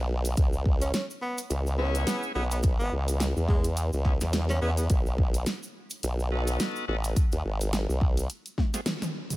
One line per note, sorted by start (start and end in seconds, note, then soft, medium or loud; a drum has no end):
0.00 0.35 B1 loud
0.25 closed hi-hat medium
0.25 cabasa medium
0.37 0.92 C#2 loud
0.37 kick loud
0.37 closed hi-hat medium
0.37 cabasa medium
0.53 cabasa soft
0.66 kick loud
0.81 0.89 C#4 medium
0.81 closed hi-hat medium
0.81 cabasa medium
0.94 1.04 C#4 medium
0.94 snare loud
0.94 closed hi-hat medium
0.94 cabasa medium
1.10 cabasa soft
1.22 1.39 B3 medium
1.38 closed hi-hat medium
1.38 cabasa medium
1.50 2.05 C#2 loud
1.50 closed hi-hat medium
1.50 cabasa medium
1.67 cabasa soft
1.78 2.32 B3 medium
1.78 1.95 C#4 loud
1.78 2.32 C#4 medium
1.78 2.32 E4 medium
1.78 2.32 G#4 loud
1.95 closed hi-hat soft
1.95 cabasa medium
2.07 2.24 B3 medium
2.07 snare loud
2.07 closed hi-hat medium
2.07 cabasa medium
2.23 cabasa soft
2.35 2.77 B1 loud
2.35 2.45 B3 medium
2.35 2.44 B3 medium
2.35 2.44 C#4 medium
2.35 2.44 E4 medium
2.35 2.44 G#4 loud
2.51 2.59 B3 medium
2.51 closed hi-hat medium
2.51 cabasa medium
2.63 kick loud
2.63 closed hi-hat medium
2.63 cabasa medium
2.79 2.90 G#1 loud
2.79 2.93 B3 loud
2.79 cabasa soft
2.92 3.34 C#2 loud
3.08 closed hi-hat medium
3.08 cabasa medium
3.20 snare loud
3.20 closed hi-hat medium
3.20 cabasa medium
3.36 3.90 E2 medium
3.36 cabasa soft
3.49 3.65 G#3 medium
3.49 kick loud
3.64 closed hi-hat soft
3.64 cabasa medium
3.77 closed hi-hat medium
3.77 cabasa medium
3.93 4.19 C#2 medium
3.93 cabasa soft
4.05 4.14 B3 medium
4.05 4.14 C#4 medium
4.05 4.14 E4 medium
4.05 4.14 G#4 loud
4.05 kick medium
4.05 snare soft
4.21 4.60 E2 medium
4.21 snare medium
4.21 closed hi-hat soft
4.21 cabasa medium
4.33 snare loud
4.33 closed hi-hat medium
4.33 cabasa medium
4.49 4.59 C#4 medium
4.49 snare medium
4.49 cabasa soft
4.61 4.88 E2 medium
4.61 4.72 B3 medium
4.61 4.70 B3 medium
4.61 4.70 C#4 medium
4.61 4.70 E4 medium
4.61 4.70 G#4 loud
4.77 4.86 B3 medium
4.77 closed hi-hat medium
4.77 cabasa medium
4.90 5.45 B1 loud
4.90 kick loud
4.90 closed hi-hat medium
4.90 cabasa medium
5.06 cabasa soft
5.18 kick loud
5.34 closed hi-hat medium
5.34 cabasa medium
5.46 snare loud
5.46 closed hi-hat medium
5.46 cabasa medium
5.63 cabasa soft
5.90 closed hi-hat medium
5.90 cabasa medium
6.03 6.58 B1 loud
6.03 closed hi-hat medium
6.03 cabasa medium
6.19 cabasa soft
6.32 6.85 B3 medium
6.32 6.85 D#4 medium
6.32 6.85 F#4 medium
6.32 6.85 A4 loud
6.47 closed hi-hat medium
6.47 cabasa medium
6.60 snare loud
6.60 closed hi-hat medium
6.60 cabasa medium
6.76 cabasa soft
6.88 7.15 A1 loud
6.88 6.97 B3 medium
6.88 6.96 D#4 medium
6.88 6.96 F#4 medium
6.88 6.97 A4 loud
7.04 closed hi-hat medium
7.04 cabasa medium
7.16 kick loud
7.16 closed hi-hat medium
7.16 cabasa medium
7.32 7.43 D#2 loud
7.32 closed hi-hat soft
7.32 cabasa soft
7.45 7.87 G#1 loud
7.61 closed hi-hat medium
7.61 cabasa medium
7.73 snare loud
7.73 closed hi-hat medium
7.73 cabasa medium
7.89 8.28 C2 medium
7.89 cabasa soft
8.01 kick loud
8.17 closed hi-hat medium
8.17 cabasa medium
8.30 closed hi-hat medium
8.30 cabasa medium
8.46 closed hi-hat soft
8.46 cabasa soft
8.58 kick medium
8.58 snare soft
8.58 high tom medium
8.74 8.81 A3 medium
8.74 8.81 C4 medium
8.74 8.81 F#4 medium
8.74 8.81 G#4 loud
8.74 snare medium
8.74 closed hi-hat medium
8.74 cabasa medium
8.86 snare loud
8.86 closed hi-hat medium
8.86 mid tom medium
8.86 cabasa medium
9.02 snare medium
9.02 closed hi-hat soft
9.02 mid tom medium
9.02 cabasa soft
9.30 closed hi-hat medium
9.30 mid tom soft
9.30 cabasa medium
9.33 mid tom soft